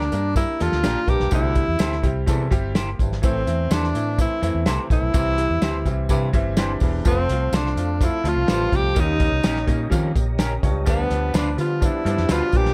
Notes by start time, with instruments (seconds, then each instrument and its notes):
Already playing: tenor saxophone D4
0.01 snare
0.11 fingered electric bass G2, grand piano A#3 D4 G4 A#4, closed hi-hat, tambourine
0.35 grand piano A#3 D4 G4 A#4, tenor saxophone E4, kick, closed hi-hat, tambourine
0.60 fingered electric bass E2, grand piano A#3 D4 G4 A4, tenor saxophone F4, closed hi-hat, tambourine
0.72 fingered electric bass D2, snare
0.83 fingered electric bass A#1, baritone saxophone A#2, grand piano A#3 D4 G4 A#4, clean electric guitar D4 G4 A#4, snare, closed hi-hat, tambourine
1.07 fingered electric bass A#1, baritone saxophone G2, grand piano A#3 D4 G4 A#4, tenor saxophone G4, kick, closed hi-hat, tambourine
1.20 fingered electric bass B1, snare
1.31 fingered electric bass C2, baritone saxophone D2, grand piano G3 C4 E4 G4, tenor saxophone E4, kick, closed hi-hat, tambourine
1.54 grand piano G3 C4 E4 G4, kick, closed hi-hat, tambourine
1.68 fingered electric bass E2
1.78 fingered electric bass D2, grand piano G3 C4 E4 A4, clean electric guitar E4 G4 C5, snare, closed hi-hat, tambourine
1.92 snare
2.02 fingered electric bass C2, grand piano G3 C4 E4 G4, kick, closed hi-hat, tambourine
2.26 baritone saxophone E2, fingered electric bass C3, grand piano G3 C4 E4 A4, kick, closed hi-hat, tambourine
2.51 fingered electric bass G1, grand piano G3 C4 E4 G4, kick, closed hi-hat, tambourine
2.75 grand piano A#3 G4, clean electric guitar E4 G4 C5, snare, closed hi-hat, tambourine
2.99 fingered electric bass G#1, baritone saxophone G2, grand piano E4 C5, kick, closed hi-hat, tambourine
3.12 snare
3.22 fingered electric bass A1, baritone saxophone A2, grand piano E3 A3 C4 E4, tenor saxophone C4, kick, closed hi-hat, tambourine
3.45 fingered electric bass E2, grand piano E3 A3 C4 E4, closed hi-hat, tambourine
3.70 fingered electric bass E2, grand piano E3 A3 C4 G4, tenor saxophone D4, clean electric guitar E4 A4 C5, snare, closed hi-hat, tambourine
3.84 snare
3.94 fingered electric bass A2, grand piano E3 A3 C4 E4, closed hi-hat, tambourine
4.18 grand piano E3 A3 C4 E4, tenor saxophone E4, kick, closed hi-hat, tambourine
4.42 fingered electric bass F2, grand piano E3 A3 C4 E4, closed hi-hat, tambourine
4.55 fingered electric bass E2
4.65 fingered electric bass C2, baritone saxophone C3, grand piano E3 A3 C4 E4, clean electric guitar E4 A4 C5, snare, closed hi-hat, tambourine
4.90 fingered electric bass A#1, baritone saxophone A2, grand piano E3 A3 C4 E4, tenor saxophone E4, kick, closed hi-hat, tambourine
5.02 fingered electric bass B1
5.13 fingered electric bass C2, baritone saxophone C3, grand piano E3 G3 C4 E4, kick, closed hi-hat, tambourine
5.37 grand piano E3 G3 C4 E4, closed hi-hat, tambourine
5.50 fingered electric bass E2
5.61 grand piano E3 G3 C4 G4, clean electric guitar E4 G4 C5, snare, closed hi-hat, tambourine
5.85 fingered electric bass C2, grand piano E3 G3 C4 E4, kick, closed hi-hat, tambourine
6.09 baritone saxophone G2, fingered electric bass C3, grand piano E3 G3 C4 E4, kick, closed hi-hat, tambourine
6.33 fingered electric bass G1, grand piano E3 G3 C4 E4, kick, closed hi-hat, tambourine
6.57 grand piano E3 G3 C4 D4 G5, clean electric guitar E4 G4 C5, snare, closed hi-hat, tambourine
6.80 fingered electric bass E1, baritone saxophone E2, grand piano E3 G3 C4 D4 E5, kick, open hi-hat, tambourine
7.05 fingered electric bass F1, baritone saxophone F2, grand piano F3 A3 C4 F4, tenor saxophone C4, tonewheel organ A4 C5 F5 C6, kick, closed hi-hat, tambourine
7.29 fingered electric bass C2, grand piano F3 A3 C4 F4, closed hi-hat, tambourine
7.53 grand piano F3 A3 C4 F4, tenor saxophone D4, clean electric guitar F4 A4 C5, snare, closed hi-hat, tambourine
7.66 snare
7.76 fingered electric bass F2, grand piano F3 A3 C4 F4, closed hi-hat, tambourine
8.01 grand piano F3 A3 C4 F4, tenor saxophone E4, kick, closed hi-hat, tambourine
8.24 fingered electric bass D2, grand piano F3 A3 C4 F4, closed hi-hat, tambourine
8.28 tenor saxophone F4
8.36 fingered electric bass C2
8.47 fingered electric bass A1, baritone saxophone G2, grand piano F3 A3 C4 F4, clean electric guitar F4 A4 C5, snare, closed hi-hat, tambourine
8.71 fingered electric bass C2, baritone saxophone F2, grand piano F3 A3 C4 G4, kick, closed hi-hat, tambourine
8.76 tenor saxophone G4
8.95 fingered electric bass D#2, baritone saxophone D#2, grand piano G3 A#3 C#4 D#4, tonewheel organ G4 C#5 D#5 A#5, kick, closed hi-hat, tambourine
9.00 tenor saxophone D#4
9.18 grand piano G3 A#3 C#4 D#4, kick, closed hi-hat, tambourine
9.32 fingered electric bass C2
9.43 fingered electric bass A#1, grand piano G3 A#3 C#4 D#4, clean electric guitar C#4 G4 A#4, snare, closed hi-hat, tambourine
9.56 snare
9.66 fingered electric bass A#2, grand piano G3 A#3 C#4 D#4, kick, closed hi-hat, tambourine
9.90 baritone saxophone F2, fingered electric bass D#3, grand piano G3 A#3 C#4 F4, kick, closed hi-hat, tambourine
10.15 fingered electric bass A#1, grand piano A#3 G4, kick, closed hi-hat, tambourine
10.39 clean electric guitar C#4 G4 A#4, grand piano C#4 A#4, snare, closed hi-hat, tambourine
10.63 fingered electric bass C#2, baritone saxophone G2, grand piano F4 C#5, kick, closed hi-hat, tambourine
10.86 fingered electric bass D2, baritone saxophone G2, grand piano F3 G3 B3 D4, tenor saxophone B3, tonewheel organ D5 B5, kick, closed hi-hat, tambourine
11.10 fingered electric bass D2, grand piano F3 G3 B3 D4, closed hi-hat, tambourine
11.33 fingered electric bass D2, grand piano F3 G3 B3 D4, clean electric guitar D4 F4 B4, snare, closed hi-hat, tambourine
11.37 tenor saxophone D4
11.57 fingered electric bass D3, grand piano F3 G3 B3 F4, tenor saxophone F4, closed hi-hat, tambourine
11.80 grand piano F3 G3 B3 D4, kick, closed hi-hat, tambourine
11.85 tenor saxophone E4
12.05 fingered electric bass G2, grand piano F3 G3 B3 D4, closed hi-hat, tambourine
12.17 fingered electric bass F2, snare
12.29 fingered electric bass D2, baritone saxophone B2, grand piano F3 G3 B3 D4, clean electric guitar D4 F4 B4, tenor saxophone F4, snare, closed hi-hat, tambourine
12.52 fingered electric bass A#1, baritone saxophone A#2, grand piano F3 G3 B3 D4, kick, closed hi-hat, tambourine
12.57 tenor saxophone G4
12.65 fingered electric bass B1, snare